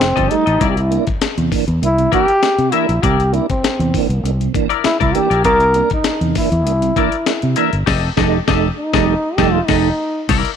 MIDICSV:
0, 0, Header, 1, 7, 480
1, 0, Start_track
1, 0, Tempo, 604839
1, 490, Time_signature, 4, 2, 24, 8
1, 8384, End_track
2, 0, Start_track
2, 0, Title_t, "Clean electric guitar"
2, 0, Program_c, 0, 27
2, 124, Note_on_c, 0, 75, 76
2, 129, Note_on_c, 0, 69, 77
2, 134, Note_on_c, 0, 67, 62
2, 261, Note_off_c, 0, 75, 0
2, 263, Note_off_c, 0, 69, 0
2, 266, Note_off_c, 0, 67, 0
2, 365, Note_on_c, 0, 75, 70
2, 371, Note_on_c, 0, 69, 64
2, 376, Note_on_c, 0, 67, 49
2, 471, Note_off_c, 0, 67, 0
2, 472, Note_off_c, 0, 75, 0
2, 475, Note_off_c, 0, 69, 0
2, 475, Note_on_c, 0, 64, 80
2, 480, Note_on_c, 0, 70, 74
2, 487, Note_on_c, 0, 74, 92
2, 625, Note_off_c, 0, 64, 0
2, 628, Note_off_c, 0, 70, 0
2, 631, Note_off_c, 0, 74, 0
2, 1680, Note_on_c, 0, 64, 90
2, 1683, Note_on_c, 0, 70, 99
2, 1691, Note_on_c, 0, 74, 106
2, 1828, Note_off_c, 0, 64, 0
2, 1830, Note_off_c, 0, 70, 0
2, 1834, Note_off_c, 0, 74, 0
2, 2159, Note_on_c, 0, 64, 80
2, 2165, Note_on_c, 0, 70, 80
2, 2165, Note_on_c, 0, 76, 90
2, 2308, Note_off_c, 0, 64, 0
2, 2311, Note_off_c, 0, 70, 0
2, 2311, Note_off_c, 0, 76, 0
2, 2400, Note_on_c, 0, 64, 71
2, 2406, Note_on_c, 0, 70, 75
2, 2409, Note_on_c, 0, 74, 91
2, 2549, Note_off_c, 0, 64, 0
2, 2552, Note_off_c, 0, 70, 0
2, 2553, Note_off_c, 0, 74, 0
2, 3726, Note_on_c, 0, 74, 89
2, 3730, Note_on_c, 0, 64, 68
2, 3730, Note_on_c, 0, 70, 82
2, 3863, Note_off_c, 0, 74, 0
2, 3865, Note_off_c, 0, 64, 0
2, 3865, Note_off_c, 0, 70, 0
2, 3968, Note_on_c, 0, 74, 83
2, 3970, Note_on_c, 0, 70, 80
2, 3979, Note_on_c, 0, 64, 72
2, 4104, Note_off_c, 0, 74, 0
2, 4105, Note_off_c, 0, 70, 0
2, 4110, Note_off_c, 0, 64, 0
2, 4207, Note_on_c, 0, 74, 65
2, 4214, Note_on_c, 0, 70, 60
2, 4218, Note_on_c, 0, 64, 50
2, 4307, Note_off_c, 0, 64, 0
2, 4312, Note_off_c, 0, 70, 0
2, 4313, Note_off_c, 0, 74, 0
2, 4316, Note_on_c, 0, 64, 81
2, 4322, Note_on_c, 0, 70, 79
2, 4326, Note_on_c, 0, 74, 89
2, 4467, Note_off_c, 0, 64, 0
2, 4469, Note_off_c, 0, 70, 0
2, 4472, Note_off_c, 0, 74, 0
2, 5530, Note_on_c, 0, 64, 83
2, 5535, Note_on_c, 0, 70, 85
2, 5539, Note_on_c, 0, 74, 102
2, 5673, Note_off_c, 0, 64, 0
2, 5675, Note_off_c, 0, 70, 0
2, 5677, Note_off_c, 0, 74, 0
2, 6002, Note_on_c, 0, 64, 79
2, 6006, Note_on_c, 0, 70, 83
2, 6014, Note_on_c, 0, 76, 81
2, 6148, Note_off_c, 0, 64, 0
2, 6150, Note_off_c, 0, 70, 0
2, 6154, Note_off_c, 0, 76, 0
2, 6240, Note_on_c, 0, 67, 97
2, 6246, Note_on_c, 0, 69, 112
2, 6251, Note_on_c, 0, 75, 100
2, 6409, Note_off_c, 0, 67, 0
2, 6412, Note_off_c, 0, 69, 0
2, 6416, Note_off_c, 0, 75, 0
2, 6487, Note_on_c, 0, 67, 110
2, 6492, Note_on_c, 0, 69, 102
2, 6496, Note_on_c, 0, 75, 103
2, 6653, Note_off_c, 0, 67, 0
2, 6656, Note_off_c, 0, 69, 0
2, 6658, Note_off_c, 0, 75, 0
2, 6729, Note_on_c, 0, 67, 104
2, 6735, Note_on_c, 0, 69, 97
2, 6735, Note_on_c, 0, 75, 104
2, 6894, Note_off_c, 0, 67, 0
2, 6897, Note_off_c, 0, 69, 0
2, 6898, Note_off_c, 0, 75, 0
2, 7091, Note_on_c, 0, 75, 117
2, 7096, Note_on_c, 0, 69, 113
2, 7101, Note_on_c, 0, 67, 103
2, 7253, Note_off_c, 0, 75, 0
2, 7256, Note_off_c, 0, 69, 0
2, 7259, Note_off_c, 0, 67, 0
2, 7446, Note_on_c, 0, 75, 101
2, 7453, Note_on_c, 0, 67, 98
2, 7453, Note_on_c, 0, 69, 108
2, 7612, Note_off_c, 0, 75, 0
2, 7616, Note_off_c, 0, 67, 0
2, 7616, Note_off_c, 0, 69, 0
2, 7687, Note_on_c, 0, 75, 114
2, 7696, Note_on_c, 0, 67, 103
2, 7696, Note_on_c, 0, 69, 110
2, 7852, Note_off_c, 0, 75, 0
2, 7857, Note_off_c, 0, 67, 0
2, 7857, Note_off_c, 0, 69, 0
2, 8166, Note_on_c, 0, 64, 83
2, 8172, Note_on_c, 0, 70, 88
2, 8173, Note_on_c, 0, 74, 89
2, 8329, Note_off_c, 0, 64, 0
2, 8332, Note_off_c, 0, 70, 0
2, 8332, Note_off_c, 0, 74, 0
2, 8384, End_track
3, 0, Start_track
3, 0, Title_t, "Trombone"
3, 0, Program_c, 1, 57
3, 0, Note_on_c, 1, 60, 104
3, 244, Note_on_c, 1, 63, 102
3, 256, Note_off_c, 1, 60, 0
3, 548, Note_off_c, 1, 63, 0
3, 553, Note_on_c, 1, 67, 72
3, 611, Note_on_c, 1, 64, 85
3, 622, Note_off_c, 1, 67, 0
3, 854, Note_off_c, 1, 64, 0
3, 1463, Note_on_c, 1, 64, 104
3, 1681, Note_off_c, 1, 64, 0
3, 1697, Note_on_c, 1, 67, 123
3, 2171, Note_on_c, 1, 64, 96
3, 2183, Note_off_c, 1, 67, 0
3, 2404, Note_on_c, 1, 67, 104
3, 2416, Note_off_c, 1, 64, 0
3, 2650, Note_on_c, 1, 64, 89
3, 2662, Note_off_c, 1, 67, 0
3, 2775, Note_off_c, 1, 64, 0
3, 2780, Note_on_c, 1, 60, 73
3, 3468, Note_off_c, 1, 60, 0
3, 3846, Note_on_c, 1, 64, 103
3, 3967, Note_off_c, 1, 64, 0
3, 3971, Note_on_c, 1, 64, 96
3, 4087, Note_on_c, 1, 67, 101
3, 4099, Note_off_c, 1, 64, 0
3, 4321, Note_off_c, 1, 67, 0
3, 4326, Note_on_c, 1, 70, 125
3, 4670, Note_off_c, 1, 70, 0
3, 4707, Note_on_c, 1, 63, 86
3, 5031, Note_off_c, 1, 63, 0
3, 5059, Note_on_c, 1, 64, 94
3, 6222, Note_off_c, 1, 64, 0
3, 6964, Note_on_c, 1, 63, 103
3, 7422, Note_on_c, 1, 67, 124
3, 7434, Note_off_c, 1, 63, 0
3, 7557, Note_on_c, 1, 65, 97
3, 7569, Note_off_c, 1, 67, 0
3, 7671, Note_on_c, 1, 63, 93
3, 7683, Note_off_c, 1, 65, 0
3, 8157, Note_off_c, 1, 63, 0
3, 8384, End_track
4, 0, Start_track
4, 0, Title_t, "Tonewheel organ"
4, 0, Program_c, 2, 16
4, 5, Note_on_c, 2, 57, 42
4, 8, Note_on_c, 2, 63, 45
4, 58, Note_off_c, 2, 57, 0
4, 59, Note_off_c, 2, 63, 0
4, 131, Note_on_c, 2, 53, 55
4, 228, Note_off_c, 2, 53, 0
4, 245, Note_on_c, 2, 55, 72
4, 247, Note_on_c, 2, 57, 66
4, 249, Note_on_c, 2, 63, 82
4, 354, Note_off_c, 2, 55, 0
4, 355, Note_off_c, 2, 57, 0
4, 356, Note_off_c, 2, 63, 0
4, 480, Note_on_c, 2, 48, 53
4, 591, Note_off_c, 2, 48, 0
4, 720, Note_on_c, 2, 58, 63
4, 727, Note_on_c, 2, 62, 86
4, 832, Note_off_c, 2, 58, 0
4, 835, Note_off_c, 2, 62, 0
4, 964, Note_on_c, 2, 58, 42
4, 966, Note_on_c, 2, 62, 43
4, 1018, Note_off_c, 2, 58, 0
4, 1019, Note_off_c, 2, 62, 0
4, 1087, Note_on_c, 2, 48, 56
4, 1187, Note_off_c, 2, 48, 0
4, 1200, Note_on_c, 2, 52, 81
4, 1200, Note_on_c, 2, 58, 70
4, 1201, Note_on_c, 2, 62, 86
4, 1312, Note_off_c, 2, 52, 0
4, 1312, Note_off_c, 2, 58, 0
4, 1313, Note_off_c, 2, 62, 0
4, 1441, Note_on_c, 2, 62, 45
4, 1442, Note_on_c, 2, 58, 41
4, 1497, Note_off_c, 2, 62, 0
4, 1498, Note_off_c, 2, 58, 0
4, 1568, Note_on_c, 2, 48, 61
4, 1668, Note_off_c, 2, 48, 0
4, 1681, Note_on_c, 2, 52, 79
4, 1683, Note_on_c, 2, 58, 68
4, 1685, Note_on_c, 2, 62, 86
4, 1793, Note_off_c, 2, 52, 0
4, 1794, Note_off_c, 2, 58, 0
4, 1795, Note_off_c, 2, 62, 0
4, 1924, Note_on_c, 2, 58, 37
4, 1924, Note_on_c, 2, 62, 44
4, 1979, Note_off_c, 2, 58, 0
4, 1979, Note_off_c, 2, 62, 0
4, 2053, Note_on_c, 2, 48, 57
4, 2150, Note_off_c, 2, 48, 0
4, 2165, Note_on_c, 2, 52, 79
4, 2167, Note_on_c, 2, 58, 68
4, 2171, Note_on_c, 2, 62, 83
4, 2275, Note_off_c, 2, 52, 0
4, 2276, Note_off_c, 2, 58, 0
4, 2278, Note_off_c, 2, 62, 0
4, 2410, Note_on_c, 2, 48, 62
4, 2517, Note_off_c, 2, 48, 0
4, 2639, Note_on_c, 2, 58, 72
4, 2643, Note_on_c, 2, 62, 71
4, 2752, Note_off_c, 2, 58, 0
4, 2754, Note_off_c, 2, 62, 0
4, 2883, Note_on_c, 2, 58, 45
4, 2884, Note_on_c, 2, 62, 45
4, 2938, Note_off_c, 2, 58, 0
4, 2939, Note_off_c, 2, 62, 0
4, 3014, Note_on_c, 2, 48, 60
4, 3111, Note_off_c, 2, 48, 0
4, 3125, Note_on_c, 2, 52, 80
4, 3126, Note_on_c, 2, 58, 72
4, 3129, Note_on_c, 2, 62, 92
4, 3235, Note_off_c, 2, 52, 0
4, 3236, Note_off_c, 2, 58, 0
4, 3237, Note_off_c, 2, 62, 0
4, 3367, Note_on_c, 2, 62, 44
4, 3369, Note_on_c, 2, 58, 40
4, 3420, Note_off_c, 2, 62, 0
4, 3421, Note_off_c, 2, 58, 0
4, 3494, Note_on_c, 2, 48, 61
4, 3591, Note_off_c, 2, 48, 0
4, 3603, Note_on_c, 2, 52, 75
4, 3607, Note_on_c, 2, 58, 72
4, 3609, Note_on_c, 2, 62, 83
4, 3714, Note_off_c, 2, 52, 0
4, 3716, Note_off_c, 2, 58, 0
4, 3717, Note_off_c, 2, 62, 0
4, 3853, Note_on_c, 2, 58, 45
4, 3853, Note_on_c, 2, 62, 47
4, 3903, Note_off_c, 2, 58, 0
4, 3903, Note_off_c, 2, 62, 0
4, 3979, Note_on_c, 2, 48, 58
4, 4073, Note_off_c, 2, 48, 0
4, 4087, Note_on_c, 2, 52, 78
4, 4088, Note_on_c, 2, 58, 71
4, 4092, Note_on_c, 2, 62, 90
4, 4196, Note_off_c, 2, 52, 0
4, 4196, Note_off_c, 2, 58, 0
4, 4198, Note_off_c, 2, 62, 0
4, 4329, Note_on_c, 2, 48, 60
4, 4437, Note_off_c, 2, 48, 0
4, 4567, Note_on_c, 2, 58, 75
4, 4572, Note_on_c, 2, 62, 80
4, 4676, Note_off_c, 2, 58, 0
4, 4678, Note_off_c, 2, 62, 0
4, 4806, Note_on_c, 2, 58, 44
4, 4807, Note_on_c, 2, 62, 42
4, 4859, Note_off_c, 2, 58, 0
4, 4860, Note_off_c, 2, 62, 0
4, 4938, Note_on_c, 2, 48, 63
4, 5033, Note_off_c, 2, 48, 0
4, 5041, Note_on_c, 2, 52, 80
4, 5041, Note_on_c, 2, 58, 75
4, 5045, Note_on_c, 2, 62, 81
4, 5152, Note_off_c, 2, 52, 0
4, 5153, Note_off_c, 2, 58, 0
4, 5154, Note_off_c, 2, 62, 0
4, 5286, Note_on_c, 2, 58, 43
4, 5288, Note_on_c, 2, 62, 47
4, 5339, Note_off_c, 2, 58, 0
4, 5340, Note_off_c, 2, 62, 0
4, 5411, Note_on_c, 2, 48, 65
4, 5509, Note_off_c, 2, 48, 0
4, 5524, Note_on_c, 2, 52, 80
4, 5526, Note_on_c, 2, 58, 71
4, 5529, Note_on_c, 2, 62, 88
4, 5634, Note_off_c, 2, 52, 0
4, 5635, Note_off_c, 2, 58, 0
4, 5636, Note_off_c, 2, 62, 0
4, 5767, Note_on_c, 2, 58, 45
4, 5769, Note_on_c, 2, 62, 50
4, 5819, Note_off_c, 2, 58, 0
4, 5820, Note_off_c, 2, 62, 0
4, 5897, Note_on_c, 2, 48, 57
4, 5992, Note_off_c, 2, 48, 0
4, 6008, Note_on_c, 2, 52, 74
4, 6010, Note_on_c, 2, 58, 66
4, 6012, Note_on_c, 2, 62, 87
4, 6115, Note_off_c, 2, 52, 0
4, 6116, Note_off_c, 2, 58, 0
4, 6117, Note_off_c, 2, 62, 0
4, 6482, Note_on_c, 2, 57, 108
4, 6487, Note_on_c, 2, 63, 111
4, 6650, Note_off_c, 2, 57, 0
4, 6653, Note_off_c, 2, 63, 0
4, 6726, Note_on_c, 2, 63, 105
4, 6730, Note_on_c, 2, 57, 103
4, 6892, Note_off_c, 2, 63, 0
4, 6894, Note_off_c, 2, 57, 0
4, 7093, Note_on_c, 2, 55, 98
4, 7095, Note_on_c, 2, 57, 101
4, 7095, Note_on_c, 2, 63, 105
4, 7254, Note_off_c, 2, 55, 0
4, 7255, Note_off_c, 2, 63, 0
4, 7256, Note_off_c, 2, 57, 0
4, 7447, Note_on_c, 2, 55, 116
4, 7449, Note_on_c, 2, 57, 113
4, 7452, Note_on_c, 2, 63, 101
4, 7612, Note_off_c, 2, 55, 0
4, 7614, Note_off_c, 2, 57, 0
4, 7615, Note_off_c, 2, 63, 0
4, 7687, Note_on_c, 2, 57, 101
4, 7689, Note_on_c, 2, 63, 109
4, 7852, Note_off_c, 2, 57, 0
4, 7853, Note_off_c, 2, 63, 0
4, 8169, Note_on_c, 2, 48, 65
4, 8274, Note_off_c, 2, 48, 0
4, 8384, End_track
5, 0, Start_track
5, 0, Title_t, "Fingered electric bass"
5, 0, Program_c, 3, 33
5, 7, Note_on_c, 3, 29, 87
5, 105, Note_off_c, 3, 29, 0
5, 132, Note_on_c, 3, 31, 78
5, 220, Note_off_c, 3, 31, 0
5, 373, Note_on_c, 3, 33, 91
5, 460, Note_off_c, 3, 33, 0
5, 483, Note_on_c, 3, 36, 115
5, 766, Note_off_c, 3, 36, 0
5, 1092, Note_on_c, 3, 40, 93
5, 1180, Note_off_c, 3, 40, 0
5, 1331, Note_on_c, 3, 40, 96
5, 1419, Note_off_c, 3, 40, 0
5, 1445, Note_on_c, 3, 36, 94
5, 1630, Note_off_c, 3, 36, 0
5, 2050, Note_on_c, 3, 48, 81
5, 2139, Note_off_c, 3, 48, 0
5, 2292, Note_on_c, 3, 34, 97
5, 2380, Note_off_c, 3, 34, 0
5, 2406, Note_on_c, 3, 36, 114
5, 2688, Note_off_c, 3, 36, 0
5, 3010, Note_on_c, 3, 40, 95
5, 3100, Note_off_c, 3, 40, 0
5, 3247, Note_on_c, 3, 36, 98
5, 3337, Note_off_c, 3, 36, 0
5, 3360, Note_on_c, 3, 36, 93
5, 3547, Note_off_c, 3, 36, 0
5, 3973, Note_on_c, 3, 36, 80
5, 4061, Note_off_c, 3, 36, 0
5, 4209, Note_on_c, 3, 34, 81
5, 4324, Note_off_c, 3, 34, 0
5, 4324, Note_on_c, 3, 36, 109
5, 4606, Note_off_c, 3, 36, 0
5, 4928, Note_on_c, 3, 40, 83
5, 5017, Note_off_c, 3, 40, 0
5, 5171, Note_on_c, 3, 40, 98
5, 5287, Note_off_c, 3, 40, 0
5, 5287, Note_on_c, 3, 36, 82
5, 5471, Note_off_c, 3, 36, 0
5, 5897, Note_on_c, 3, 48, 75
5, 5982, Note_off_c, 3, 48, 0
5, 6133, Note_on_c, 3, 31, 92
5, 6242, Note_off_c, 3, 31, 0
5, 6246, Note_on_c, 3, 29, 121
5, 6413, Note_off_c, 3, 29, 0
5, 6485, Note_on_c, 3, 29, 111
5, 6652, Note_off_c, 3, 29, 0
5, 6729, Note_on_c, 3, 29, 105
5, 6894, Note_off_c, 3, 29, 0
5, 7094, Note_on_c, 3, 29, 119
5, 7255, Note_off_c, 3, 29, 0
5, 7446, Note_on_c, 3, 29, 108
5, 7611, Note_off_c, 3, 29, 0
5, 7688, Note_on_c, 3, 29, 108
5, 7853, Note_off_c, 3, 29, 0
5, 8167, Note_on_c, 3, 36, 120
5, 8263, Note_off_c, 3, 36, 0
5, 8384, End_track
6, 0, Start_track
6, 0, Title_t, "Muted fingered electric bass strokes"
6, 3846, Note_on_c, 9, 29, 47
6, 3926, Note_off_c, 9, 29, 0
6, 8384, End_track
7, 0, Start_track
7, 0, Title_t, "Drums"
7, 8, Note_on_c, 9, 38, 105
7, 11, Note_on_c, 9, 42, 83
7, 87, Note_off_c, 9, 38, 0
7, 90, Note_off_c, 9, 42, 0
7, 133, Note_on_c, 9, 36, 96
7, 137, Note_on_c, 9, 42, 47
7, 212, Note_off_c, 9, 36, 0
7, 216, Note_off_c, 9, 42, 0
7, 244, Note_on_c, 9, 42, 84
7, 323, Note_off_c, 9, 42, 0
7, 372, Note_on_c, 9, 42, 60
7, 451, Note_off_c, 9, 42, 0
7, 483, Note_on_c, 9, 42, 100
7, 484, Note_on_c, 9, 36, 105
7, 563, Note_off_c, 9, 42, 0
7, 564, Note_off_c, 9, 36, 0
7, 613, Note_on_c, 9, 42, 54
7, 692, Note_off_c, 9, 42, 0
7, 728, Note_on_c, 9, 42, 75
7, 807, Note_off_c, 9, 42, 0
7, 847, Note_on_c, 9, 42, 51
7, 852, Note_on_c, 9, 36, 101
7, 926, Note_off_c, 9, 42, 0
7, 931, Note_off_c, 9, 36, 0
7, 964, Note_on_c, 9, 42, 104
7, 965, Note_on_c, 9, 38, 118
7, 1043, Note_off_c, 9, 42, 0
7, 1045, Note_off_c, 9, 38, 0
7, 1093, Note_on_c, 9, 42, 64
7, 1172, Note_off_c, 9, 42, 0
7, 1204, Note_on_c, 9, 36, 86
7, 1208, Note_on_c, 9, 46, 65
7, 1284, Note_off_c, 9, 36, 0
7, 1287, Note_off_c, 9, 46, 0
7, 1331, Note_on_c, 9, 42, 54
7, 1411, Note_off_c, 9, 42, 0
7, 1452, Note_on_c, 9, 42, 85
7, 1531, Note_off_c, 9, 42, 0
7, 1575, Note_on_c, 9, 42, 54
7, 1654, Note_off_c, 9, 42, 0
7, 1686, Note_on_c, 9, 36, 90
7, 1689, Note_on_c, 9, 42, 69
7, 1765, Note_off_c, 9, 36, 0
7, 1768, Note_off_c, 9, 42, 0
7, 1811, Note_on_c, 9, 42, 59
7, 1891, Note_off_c, 9, 42, 0
7, 1926, Note_on_c, 9, 38, 115
7, 1929, Note_on_c, 9, 42, 84
7, 2006, Note_off_c, 9, 38, 0
7, 2009, Note_off_c, 9, 42, 0
7, 2052, Note_on_c, 9, 42, 52
7, 2131, Note_off_c, 9, 42, 0
7, 2160, Note_on_c, 9, 42, 94
7, 2240, Note_off_c, 9, 42, 0
7, 2294, Note_on_c, 9, 42, 61
7, 2373, Note_off_c, 9, 42, 0
7, 2406, Note_on_c, 9, 36, 103
7, 2408, Note_on_c, 9, 42, 105
7, 2486, Note_off_c, 9, 36, 0
7, 2488, Note_off_c, 9, 42, 0
7, 2539, Note_on_c, 9, 42, 51
7, 2618, Note_off_c, 9, 42, 0
7, 2648, Note_on_c, 9, 42, 64
7, 2727, Note_off_c, 9, 42, 0
7, 2774, Note_on_c, 9, 42, 52
7, 2776, Note_on_c, 9, 36, 91
7, 2854, Note_off_c, 9, 42, 0
7, 2855, Note_off_c, 9, 36, 0
7, 2891, Note_on_c, 9, 42, 99
7, 2892, Note_on_c, 9, 38, 113
7, 2970, Note_off_c, 9, 42, 0
7, 2972, Note_off_c, 9, 38, 0
7, 3018, Note_on_c, 9, 42, 63
7, 3097, Note_off_c, 9, 42, 0
7, 3127, Note_on_c, 9, 36, 81
7, 3131, Note_on_c, 9, 46, 69
7, 3206, Note_off_c, 9, 36, 0
7, 3211, Note_off_c, 9, 46, 0
7, 3256, Note_on_c, 9, 42, 56
7, 3335, Note_off_c, 9, 42, 0
7, 3376, Note_on_c, 9, 42, 81
7, 3456, Note_off_c, 9, 42, 0
7, 3499, Note_on_c, 9, 42, 54
7, 3578, Note_off_c, 9, 42, 0
7, 3607, Note_on_c, 9, 36, 96
7, 3611, Note_on_c, 9, 42, 67
7, 3686, Note_off_c, 9, 36, 0
7, 3690, Note_off_c, 9, 42, 0
7, 3732, Note_on_c, 9, 42, 57
7, 3811, Note_off_c, 9, 42, 0
7, 3844, Note_on_c, 9, 38, 104
7, 3847, Note_on_c, 9, 42, 84
7, 3923, Note_off_c, 9, 38, 0
7, 3926, Note_off_c, 9, 42, 0
7, 3973, Note_on_c, 9, 36, 95
7, 3975, Note_on_c, 9, 42, 50
7, 4053, Note_off_c, 9, 36, 0
7, 4055, Note_off_c, 9, 42, 0
7, 4085, Note_on_c, 9, 42, 91
7, 4165, Note_off_c, 9, 42, 0
7, 4215, Note_on_c, 9, 42, 60
7, 4294, Note_off_c, 9, 42, 0
7, 4321, Note_on_c, 9, 42, 91
7, 4324, Note_on_c, 9, 36, 102
7, 4400, Note_off_c, 9, 42, 0
7, 4403, Note_off_c, 9, 36, 0
7, 4446, Note_on_c, 9, 42, 57
7, 4526, Note_off_c, 9, 42, 0
7, 4556, Note_on_c, 9, 42, 74
7, 4636, Note_off_c, 9, 42, 0
7, 4681, Note_on_c, 9, 42, 51
7, 4690, Note_on_c, 9, 36, 92
7, 4761, Note_off_c, 9, 42, 0
7, 4769, Note_off_c, 9, 36, 0
7, 4795, Note_on_c, 9, 42, 104
7, 4796, Note_on_c, 9, 38, 108
7, 4874, Note_off_c, 9, 42, 0
7, 4875, Note_off_c, 9, 38, 0
7, 4931, Note_on_c, 9, 42, 61
7, 5010, Note_off_c, 9, 42, 0
7, 5042, Note_on_c, 9, 46, 71
7, 5044, Note_on_c, 9, 36, 91
7, 5121, Note_off_c, 9, 46, 0
7, 5123, Note_off_c, 9, 36, 0
7, 5174, Note_on_c, 9, 42, 53
7, 5253, Note_off_c, 9, 42, 0
7, 5291, Note_on_c, 9, 42, 102
7, 5370, Note_off_c, 9, 42, 0
7, 5414, Note_on_c, 9, 42, 60
7, 5493, Note_off_c, 9, 42, 0
7, 5526, Note_on_c, 9, 36, 93
7, 5528, Note_on_c, 9, 42, 71
7, 5605, Note_off_c, 9, 36, 0
7, 5608, Note_off_c, 9, 42, 0
7, 5651, Note_on_c, 9, 42, 60
7, 5730, Note_off_c, 9, 42, 0
7, 5765, Note_on_c, 9, 38, 117
7, 5768, Note_on_c, 9, 42, 85
7, 5844, Note_off_c, 9, 38, 0
7, 5847, Note_off_c, 9, 42, 0
7, 5890, Note_on_c, 9, 42, 54
7, 5969, Note_off_c, 9, 42, 0
7, 5999, Note_on_c, 9, 42, 95
7, 6078, Note_off_c, 9, 42, 0
7, 6133, Note_on_c, 9, 42, 63
7, 6212, Note_off_c, 9, 42, 0
7, 6246, Note_on_c, 9, 49, 86
7, 6247, Note_on_c, 9, 36, 113
7, 6248, Note_on_c, 9, 38, 97
7, 6325, Note_off_c, 9, 49, 0
7, 6326, Note_off_c, 9, 36, 0
7, 6327, Note_off_c, 9, 38, 0
7, 6486, Note_on_c, 9, 38, 116
7, 6487, Note_on_c, 9, 36, 111
7, 6565, Note_off_c, 9, 38, 0
7, 6566, Note_off_c, 9, 36, 0
7, 6727, Note_on_c, 9, 36, 118
7, 6727, Note_on_c, 9, 38, 126
7, 6806, Note_off_c, 9, 38, 0
7, 6807, Note_off_c, 9, 36, 0
7, 7091, Note_on_c, 9, 38, 120
7, 7094, Note_on_c, 9, 36, 126
7, 7170, Note_off_c, 9, 38, 0
7, 7173, Note_off_c, 9, 36, 0
7, 7445, Note_on_c, 9, 38, 111
7, 7446, Note_on_c, 9, 36, 100
7, 7525, Note_off_c, 9, 38, 0
7, 7526, Note_off_c, 9, 36, 0
7, 7685, Note_on_c, 9, 49, 83
7, 7686, Note_on_c, 9, 38, 106
7, 7687, Note_on_c, 9, 36, 110
7, 7764, Note_off_c, 9, 49, 0
7, 7766, Note_off_c, 9, 38, 0
7, 7767, Note_off_c, 9, 36, 0
7, 8166, Note_on_c, 9, 42, 107
7, 8166, Note_on_c, 9, 49, 103
7, 8167, Note_on_c, 9, 36, 122
7, 8245, Note_off_c, 9, 42, 0
7, 8245, Note_off_c, 9, 49, 0
7, 8246, Note_off_c, 9, 36, 0
7, 8292, Note_on_c, 9, 42, 57
7, 8371, Note_off_c, 9, 42, 0
7, 8384, End_track
0, 0, End_of_file